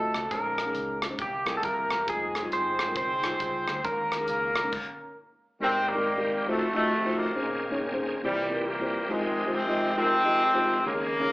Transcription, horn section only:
0.00 0.27 A3 medium
0.00 0.28 C4 medium
0.00 0.27 D#4 medium
0.00 0.27 A4 medium
0.31 1.03 A#3 medium
0.31 1.15 C#4 medium
0.31 1.15 D#4 medium
0.31 1.03 A#4 medium
1.18 1.44 G3 medium
1.18 1.64 A#3 medium
1.18 1.64 E4 medium
1.18 1.44 G4 medium
1.46 1.63 G#3 medium
1.46 1.63 G#4 medium
1.64 2.08 A#3 medium
1.64 2.05 E4 medium
1.64 2.05 G4 medium
1.64 2.08 A#4 medium
2.08 2.51 G#3 medium
2.08 2.52 C4 medium
2.08 2.52 D#4 medium
2.08 2.51 G#4 medium
2.52 2.95 C4 medium
2.52 2.95 D#4 medium
2.52 2.95 G#4 medium
2.52 2.95 C5 loud
2.96 3.80 C4 medium
2.96 3.80 D#4 medium
2.96 3.80 G#4 medium
2.96 3.80 C5 loud
3.84 5.17 A#3 medium
3.84 5.13 C#4 medium
3.84 5.17 A#4 medium
5.60 5.87 C3 loud
5.60 5.86 D#3 medium
5.60 5.86 G3 medium
5.60 5.87 C4 loud
5.87 6.44 D#3 medium
5.87 6.44 G3 medium
5.87 6.48 A#3 loud
6.48 6.74 C3 medium
6.48 6.73 D#3 medium
6.48 6.73 A3 loud
6.75 7.32 C3 medium
6.75 7.16 D#3 medium
6.75 7.16 A3 loud
7.17 8.02 C#3 medium
7.17 8.02 D#3 medium
7.17 8.02 A#3 medium
8.23 9.06 A#2 medium
8.23 8.65 E3 medium
8.23 8.65 G3 loud
8.66 9.07 E3 medium
8.66 9.07 G3 medium
8.66 9.11 A#3 loud
9.10 9.54 C3 medium
9.10 9.53 D#3 medium
9.10 9.53 G#3 loud
9.54 9.97 C3 loud
9.54 9.97 D#3 medium
9.54 9.97 G#3 medium
9.54 9.97 C4 loud
9.98 10.81 C3 loud
9.98 10.81 D#3 medium
9.98 10.82 G#3 medium
9.98 10.81 C4 loud
10.85 11.32 C#3 medium
10.85 11.32 A#3 loud

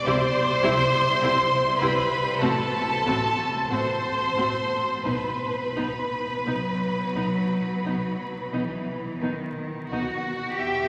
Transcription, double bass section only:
0.05 0.13 C2 medium
0.63 0.71 C2 medium
1.22 1.30 C2 medium
1.81 1.89 C2 medium
2.42 2.50 A1 medium
3.05 3.13 A1 medium
3.70 3.78 A1 medium
4.36 4.44 A1 medium
5.04 5.12 B1 medium
5.76 5.84 B1 soft
6.46 6.54 B1 medium
7.15 7.23 B1 medium
7.84 7.92 B1 medium
8.53 8.61 B1 medium
9.21 9.29 B1 soft
9.91 9.99 B1 medium
10.57 10.88 E2 medium

